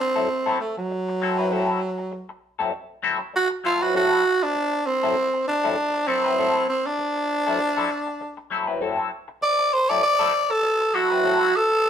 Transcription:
0.00 tenor saxophone C4
0.15 clean electric guitar F#3 C4 E4 A4
0.29 muted clean electric guitar stroke
0.46 clean electric guitar F#3 C4 E4 A4
0.60 tenor saxophone A3, muted clean electric guitar stroke
0.77 tenor saxophone F#3, muted clean electric guitar stroke
0.91 muted clean electric guitar stroke
1.09 muted clean electric guitar stroke
1.22 clean electric guitar F#3 C4 E4 A4
1.38 clean electric guitar F#3 C4 E4 B4
1.51 clean electric guitar F#3 C4 E4 A4
1.98 muted clean electric guitar stroke
2.12 muted clean electric guitar stroke
2.29 muted clean electric guitar stroke
2.59 clean electric guitar F#3 C4 E4 A4
2.72 muted clean electric guitar stroke
3.03 clean electric guitar F#3 C4 E4 A4
3.20 muted clean electric guitar stroke
3.34 tenor saxophone F#4, muted clean electric guitar stroke
3.50 muted clean electric guitar stroke
3.64 clean electric guitar F#3 C4 E4 A4, tenor saxophone F4
3.81 clean electric guitar F#3 C4 E4 B4, tenor saxophone F#4
3.94 clean electric guitar F#3 C4 E4 A4, tenor saxophone F#4
4.42 tenor saxophone D4, muted clean electric guitar stroke
4.55 muted clean electric guitar stroke
4.73 muted clean electric guitar stroke
4.86 tenor saxophone C4
5.03 clean electric guitar F#3 C4 E4 A4
5.16 muted clean electric guitar stroke
5.34 muted clean electric guitar stroke
5.48 tenor saxophone D4
5.64 clean electric guitar F#3 C4 E4 A4
5.77 muted clean electric guitar stroke
5.94 muted clean electric guitar stroke
6.07 clean electric guitar F#3 C4 E4 A4, tenor saxophone C4
6.25 clean electric guitar F#3 C4 E4 B4
6.38 clean electric guitar F#3 C4 E4 A4
6.69 tenor saxophone C4
6.86 tenor saxophone D4, muted clean electric guitar stroke
6.99 muted clean electric guitar stroke
7.16 muted clean electric guitar stroke
7.47 clean electric guitar F#3 C4 E4 A4
7.60 muted clean electric guitar stroke
7.77 clean electric guitar F#3 C4 E4 A4
7.90 muted clean electric guitar stroke
8.07 muted clean electric guitar stroke
8.21 muted clean electric guitar stroke
8.37 muted clean electric guitar stroke
8.50 clean electric guitar F#3 C4 E4 A4
8.67 clean electric guitar F#3 C4 E4 B4
8.81 clean electric guitar F#3 C4 E4 A4
9.28 muted clean electric guitar stroke
9.41 tenor saxophone D5, muted clean electric guitar stroke
9.59 muted clean electric guitar stroke
9.73 tenor saxophone C5
9.89 clean electric guitar F#3 C4 E4 A4, tenor saxophone D5
10.03 tenor saxophone D5, muted clean electric guitar stroke
10.19 clean electric guitar F#3 C4 E4 A4
10.33 muted clean electric guitar stroke
10.50 tenor saxophone A4, muted clean electric guitar stroke
10.63 muted clean electric guitar stroke
10.81 muted clean electric guitar stroke
10.93 clean electric guitar F#3 C4 E4 A4, tenor saxophone F#4
11.11 clean electric guitar F#3 C4 E4 B4
11.24 clean electric guitar F#3 C4 E4 A4
11.56 tenor saxophone A4
11.71 muted clean electric guitar stroke
11.85 muted clean electric guitar stroke

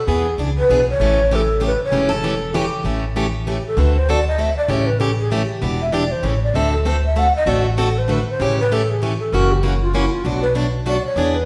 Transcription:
0.07 upright bass E2, steel-string acoustic guitar E3 B3 D4 G#4, shakuhachi G#4
0.38 upright bass C#2, steel-string acoustic guitar E3 B3 D4 G#4
0.58 shakuhachi B4
0.69 upright bass B1, steel-string acoustic guitar E3 B3 D4 G#4
0.90 shakuhachi C#5
1.00 upright bass A1, steel-string acoustic guitar C#3 E3 A3 C#4 G4
1.31 steel-string acoustic guitar C#3 E3 A3 C#4 G4, shakuhachi A4
1.60 steel-string acoustic guitar C#3 E3 A3 C#4 G4
1.66 shakuhachi B4
1.84 shakuhachi C#5
1.92 upright bass E1, steel-string acoustic guitar C#3 E3 A3 C#4 G4
2.09 steel-string acoustic guitar A4
2.23 steel-string acoustic guitar C#3 E3 A3 C#4 G4
2.54 steel-string acoustic guitar C#3 E3 A3 C#4 G4
2.84 upright bass A1, steel-string acoustic guitar C#3 E3 A3 C#4 G4
3.16 steel-string acoustic guitar C#3 E3 A3 C#4 G4
3.47 steel-string acoustic guitar C#3 E3 A3 C#4 G4, shakuhachi G4
3.67 shakuhachi A4
3.77 upright bass D2, steel-string acoustic guitar D3 A3 C4 F#4 A4, shakuhachi B4
3.96 shakuhachi C5
4.09 steel-string acoustic guitar D3 A3 C4 F#4 A4, shakuhachi D5
4.28 shakuhachi D#5
4.38 steel-string acoustic guitar D3 A3 C4 F#4 A4, shakuhachi E5
4.57 shakuhachi D5
4.68 upright bass A1, steel-string acoustic guitar C#3 E3 A3 C#4 G4, shakuhachi C#5
4.86 shakuhachi B4
4.99 steel-string acoustic guitar C#3 E3 A3 C#4 G4, shakuhachi A4
5.19 shakuhachi G#4
5.31 steel-string acoustic guitar C#3 E3 A3 C#4 G4, shakuhachi G4
5.62 upright bass E1, steel-string acoustic guitar E3 B3 D4 G4
5.82 shakuhachi E5
5.92 steel-string acoustic guitar E3 B3 D4 G4, shakuhachi D5
6.12 shakuhachi C5
6.23 upright bass A1, steel-string acoustic guitar C#3 E3 A3 C#4 G4, shakuhachi C#5
6.43 shakuhachi D5
6.54 upright bass D2, steel-string acoustic guitar D3 A3 C4 F#4 A4, shakuhachi E5
6.73 shakuhachi A4
6.85 steel-string acoustic guitar D3 A3 C4 F#4 A4, shakuhachi C5
7.06 shakuhachi E5
7.16 steel-string acoustic guitar D3 A3 C4 F#4 A4, shakuhachi F#5
7.37 shakuhachi D#5
7.46 upright bass A1, steel-string acoustic guitar D3 A3 C4 F#4 A4, shakuhachi D5
7.66 shakuhachi F#4
7.77 steel-string acoustic guitar D3 A3 C4 F#4 A4, shakuhachi A4
7.98 shakuhachi C5
8.08 steel-string acoustic guitar D3 A3 C4 F#4 A4, shakuhachi B4
8.30 shakuhachi C5
8.39 upright bass A1, steel-string acoustic guitar C#3 E3 A3 C#4 G4, shakuhachi C#5
8.60 shakuhachi B4
8.71 steel-string acoustic guitar C#3 E3 A3 C#4 G4, shakuhachi A4
8.90 shakuhachi G#4
9.02 steel-string acoustic guitar C#3 E3 A3 C#4 G4, shakuhachi G4
9.19 shakuhachi A4
9.32 upright bass F#1, steel-string acoustic guitar C#3 E3 A#3 C#4 F#4, shakuhachi A#4
9.52 shakuhachi G4
9.63 steel-string acoustic guitar C#3 E3 A#3 C#4 F#4, shakuhachi F#4
9.82 shakuhachi F4
9.94 steel-string acoustic guitar C#3 E3 A#3 C#4 F#4, shakuhachi E4
10.12 shakuhachi F4
10.24 upright bass B1, steel-string acoustic guitar B2 F#3 A3 D4 F#4, shakuhachi F#4
10.42 shakuhachi B4
10.55 steel-string acoustic guitar B2 F#3 A3 D4 F#4
10.86 steel-string acoustic guitar B2 F#3 A3 D4 F#4, shakuhachi D5
11.05 shakuhachi C#5
11.16 upright bass E2, steel-string acoustic guitar E3 B3 D4 G#4
11.35 shakuhachi B4

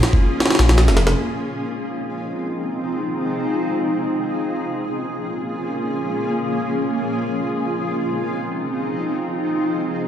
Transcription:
Already playing: ambient pad A#3 C#4 F4 G#4
0.03 snare, ride
0.13 kick
0.40 snare, ride
0.46 snare, ride
0.51 snare, ride
0.55 snare, ride
0.59 detuned saw bass A#1, snare, ride
0.69 snare, ride
0.78 snare, ride
0.88 detuned saw bass F1, snare, ride
0.97 snare, ride
1.07 snare, ride
1.16 ambient pad C4 D#4 F4 G#4
4.16 ambient pad A#3 C#4 F4
7.15 ambient pad C4 D#4

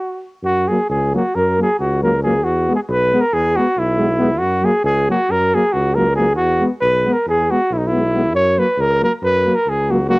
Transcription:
Already playing: cornet F#4
0.43 tuba F#2, cornet F#4
0.68 euphonium F#3, french horn A#3, cornet G#4
0.89 tuba C#2, cornet G#4
1.14 euphonium F#3, french horn A#3, cornet F#4
1.35 tuba F#2, cornet A#4
1.59 euphonium F#3, french horn A#3, cornet G#4
1.80 tuba C#2, cornet F#4
2.03 euphonium F#3, french horn A#3, cornet A#4
2.23 euphonium F#3, french horn A#3, cornet G#4
2.44 tuba E2, cornet F#4
2.68 euphonium G#3, french horn B3
2.75 cornet G#4
2.88 tuba B1, cornet B4
3.13 euphonium G#3, french horn B3
3.21 cornet A#4
3.32 tuba E2, cornet G#4
3.56 euphonium G#3, french horn B3, cornet F#4
3.77 tuba B1, cornet E4
3.99 euphonium G#3, french horn B3
4.19 euphonium G#3, french horn B3
4.39 tuba F#2, cornet F#4
4.63 euphonium F#3, french horn A#3, cornet G#4
4.84 tuba C#2, cornet G#4
5.09 euphonium F#3, french horn A#3, cornet F#4
5.29 tuba F#2, cornet A#4
5.54 euphonium F#3, french horn A#3, cornet G#4
5.73 tuba C#2, cornet F#4
5.95 euphonium F#3, french horn A#3, cornet A#4
6.16 euphonium F#3, french horn A#3, cornet G#4
6.36 tuba E2, cornet F#4
6.60 euphonium G#3, french horn B3
6.81 tuba B1, cornet B4
7.05 euphonium G#3, french horn B3
7.13 cornet A#4
7.26 tuba E2, cornet G#4
7.50 euphonium G#3, french horn B3, cornet F#4
7.70 tuba B1, cornet E4
7.78 cornet D#4
7.87 cornet E4
7.92 euphonium G#3, french horn B3
8.14 euphonium G#3, french horn B3
8.33 tuba F#2, cornet C#5
8.58 euphonium F#3, french horn A#3, cornet B4
8.78 tuba C#2, cornet A#4
9.01 euphonium F#3, french horn A#3, cornet A#4
9.22 tuba F#2, cornet B4
9.46 euphonium F#3, french horn A#3
9.55 cornet A#4
9.66 tuba C#2, cornet G#4
9.90 euphonium F#3, french horn A#3, cornet F#4
10.08 euphonium F#3, french horn A#3, cornet F#4

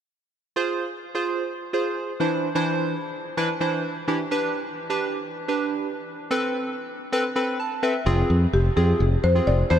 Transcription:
0.56 synth keys F4 G#4 C5
1.15 synth keys F4 G#4 C5
1.73 synth keys F4 G#4 C5
2.20 synth keys E3 D4 E4 C5
2.55 synth keys E3 D4 E4 C5
3.37 synth keys E3 D4 E4 B4
3.60 synth keys E3 D4 E4 C5
4.08 synth keys E3 D4 E4 G4
4.31 synth keys D4 G4 B4
4.90 synth keys D4 G4 B4
5.48 synth keys D4 G4 B4
6.31 synth keys C4 A4 B4
7.12 synth keys C4 A4 B4
7.36 synth keys C4 A4 B4 B5
7.60 synth keys A5
7.83 synth keys C4 A4 B4 E5
8.06 fingered electric bass F1, synth keys C4 F4 G#4
8.30 fingered electric bass F2
8.53 fingered electric bass F1, marimba G4
8.76 fingered electric bass F2, synth keys C4 F4 G#4, marimba G#4
9.00 fingered electric bass F1
9.24 fingered electric bass F2, marimba C5
9.35 synth keys C4 F4 G#4
9.47 fingered electric bass F1, marimba D5
9.70 fingered electric bass E2, synth keys D4 E4 C5, marimba C5

